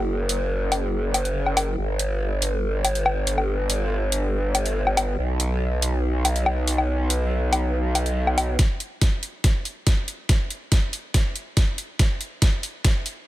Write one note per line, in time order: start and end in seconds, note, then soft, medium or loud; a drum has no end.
0.00 1.76 F#1 medium
0.29 closed hi-hat medium
0.72 open hi-hat medium
0.72 low woodblock medium
1.14 closed hi-hat medium
1.14 low woodblock soft
1.25 closed hi-hat soft
1.46 low woodblock soft
1.57 open hi-hat medium
1.57 low woodblock medium
1.78 5.16 G1 medium
1.99 closed hi-hat medium
2.42 closed hi-hat medium
2.85 closed hi-hat medium
2.85 low woodblock soft
2.95 closed hi-hat soft
3.06 low woodblock medium
3.27 open hi-hat medium
3.38 low woodblock soft
3.70 closed hi-hat medium
4.12 closed hi-hat medium
4.55 closed hi-hat medium
4.55 low woodblock soft
4.66 closed hi-hat soft
4.87 low woodblock medium
4.97 open hi-hat medium
4.97 low woodblock medium
5.19 8.57 B1 medium
5.40 closed hi-hat medium
5.82 closed hi-hat medium
6.25 closed hi-hat medium
6.25 low woodblock soft
6.36 closed hi-hat soft
6.46 low woodblock medium
6.67 open hi-hat medium
6.78 low woodblock medium
7.10 closed hi-hat medium
7.53 open hi-hat medium
7.53 low woodblock medium
7.95 closed hi-hat medium
7.95 low woodblock soft
8.06 closed hi-hat soft
8.27 low woodblock medium
8.38 open hi-hat medium
8.38 low woodblock medium
8.59 kick medium
8.59 snare soft
8.59 closed hi-hat medium
8.80 closed hi-hat medium
9.01 kick medium
9.01 snare soft
9.01 closed hi-hat medium
9.23 closed hi-hat medium
9.44 kick medium
9.44 snare soft
9.44 closed hi-hat medium
9.65 closed hi-hat medium
9.87 kick medium
9.87 snare medium
9.87 closed hi-hat medium
10.08 closed hi-hat medium
10.29 kick loud
10.29 snare medium
10.29 closed hi-hat medium
10.50 closed hi-hat medium
10.72 kick medium
10.72 snare medium
10.72 closed hi-hat medium
10.93 closed hi-hat medium
11.14 kick medium
11.14 snare medium
11.14 closed hi-hat medium
11.36 closed hi-hat medium
11.57 kick loud
11.57 snare medium
11.57 closed hi-hat medium
11.78 closed hi-hat medium
11.99 kick medium
11.99 snare medium
11.99 closed hi-hat medium
12.21 closed hi-hat medium
12.42 kick medium
12.42 snare medium
12.42 closed hi-hat medium
12.63 closed hi-hat medium
12.84 kick medium
12.84 snare medium
12.84 closed hi-hat medium
13.06 closed hi-hat medium